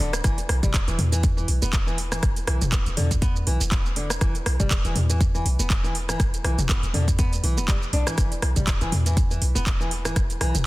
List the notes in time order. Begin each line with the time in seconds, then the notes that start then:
0.00 D1 D3
0.13 cross-stick, closed hi-hat, shaker
0.24 E1 E3, kick, cross-stick, closed hi-hat, shaker
0.38 closed hi-hat, shaker
0.49 B1, cross-stick, open hi-hat
0.63 E1 G3, kick, closed hi-hat, mid tom, shaker
0.74 kick, clap, closed hi-hat, shaker
0.88 E1 E3, closed hi-hat, shaker
0.99 E2, open hi-hat, mid tom
1.12 E3, closed hi-hat, shaker
1.23 kick, closed hi-hat, shaker
1.37 E3, shaker
1.48 B1, open hi-hat
1.62 E1 B3, shaker
1.73 kick, clap, closed hi-hat, shaker
1.87 E3, shaker
1.98 open hi-hat
2.12 E3, cross-stick, closed hi-hat, shaker
2.23 E1, kick, cross-stick, closed hi-hat, shaker
2.36 closed hi-hat, shaker
2.47 B1 E3, cross-stick, open hi-hat
2.61 E1, closed hi-hat, mid tom, shaker
2.72 B3, kick, clap, closed hi-hat, shaker
2.86 E1, closed hi-hat, shaker
2.97 E2 D3, open hi-hat, mid tom
3.11 kick, closed hi-hat, shaker
3.22 B3, kick, closed hi-hat, shaker
3.36 shaker
3.47 B1 E3, open hi-hat
3.61 E1, shaker
3.72 B3, kick, clap, closed hi-hat, shaker
3.86 shaker
3.96 D3, open hi-hat
4.10 cross-stick, closed hi-hat, shaker
4.21 E1 E3, kick, cross-stick, closed hi-hat, shaker
4.35 closed hi-hat, shaker
4.46 B1, cross-stick, open hi-hat
4.60 E1 G3, kick, closed hi-hat, mid tom, shaker
4.71 kick, clap, closed hi-hat, shaker
4.85 E1 E3, closed hi-hat, shaker
4.96 E2, open hi-hat, mid tom
5.09 E3, closed hi-hat, shaker
5.21 kick, closed hi-hat, shaker
5.34 E3, shaker
5.45 B1, open hi-hat
5.59 E1 B3, shaker
5.70 kick, clap, closed hi-hat, shaker
5.84 E3, shaker
5.95 open hi-hat
6.09 E3, cross-stick, closed hi-hat, shaker
6.20 E1, kick, cross-stick, closed hi-hat, shaker
6.34 closed hi-hat, shaker
6.44 B1 E3, cross-stick, open hi-hat
6.58 E1, closed hi-hat, mid tom, shaker
6.69 B3, kick, clap, closed hi-hat, shaker
6.83 E1, closed hi-hat, shaker
6.94 E2 D3, open hi-hat, mid tom
7.08 kick, closed hi-hat, shaker
7.19 B3, kick, closed hi-hat, shaker
7.33 closed hi-hat, shaker
7.43 B1 E3, open hi-hat
7.57 E1 B3, shaker
7.68 G3, kick, clap, closed hi-hat, shaker
7.82 shaker
7.93 B1 D4, open hi-hat
8.07 E3, cross-stick, closed hi-hat, shaker
8.18 E1 E3, kick, cross-stick, closed hi-hat, shaker
8.32 closed hi-hat, shaker
8.42 B1, cross-stick, open hi-hat
8.56 E1 G3, kick, closed hi-hat, mid tom, shaker
8.67 kick, clap, closed hi-hat, shaker
8.81 E1 E3, closed hi-hat, shaker
8.92 E2, open hi-hat, mid tom
9.06 E3, closed hi-hat, shaker
9.17 kick, closed hi-hat, shaker
9.31 E3, shaker
9.42 B1, open hi-hat
9.55 E1 B3, shaker
9.67 kick, clap, closed hi-hat, shaker
9.80 E3, shaker
9.91 open hi-hat
10.05 E3, cross-stick, closed hi-hat, shaker
10.16 E1, kick, cross-stick, closed hi-hat, shaker
10.30 closed hi-hat, shaker
10.41 B1 E3, cross-stick, open hi-hat
10.55 E1, closed hi-hat, mid tom, shaker